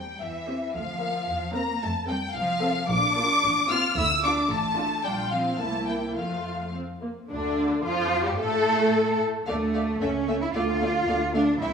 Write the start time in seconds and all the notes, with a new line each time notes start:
Already playing: G3 C4 G4 G5
0.20 E2 E3 E5
0.47 C4 G4
0.74 D2 F3 F5
1.00 A#3 A#4
1.27 E2
1.54 A#3 C4 A#4 A#5
1.81 F2 A3 A5
2.08 G3 C4 A4 G5
2.34 C2 F3 F5
2.62 C4 A4
2.89 A#1 D4 D6
3.17 A#3 F4
3.43 A1
3.69 C4 F4 F6
3.96 D2 E4 E6
4.23 D4 F4 D6
4.50 A1 A3 A5
4.77 D4 F4
5.03 A#1 G3 D4 F4 G5
5.30 F3 C4 F5
5.57 C2 A3 A#3 E4 A5
5.85 G3 G5
6.14 F2 F3 A3 F4 F5
6.73 C4
7.01 A#3
7.29 D2 D3 D4
7.84 F2 F3 F4
8.24 G2 G3 G4
8.39 A2 A3 A4
9.46 D2 A3 D5 F5
9.74 A3 D5 F5
10.01 C#2 A3 C#4 E5
10.27 A3 E5
10.41 E4
10.54 D2 A3 F4 D5 F5
10.80 A3 D5 F5
11.07 D2 A3 D5 F5
11.34 A3 D4 D5 F5
11.60 C2 C4 E4 E5 G5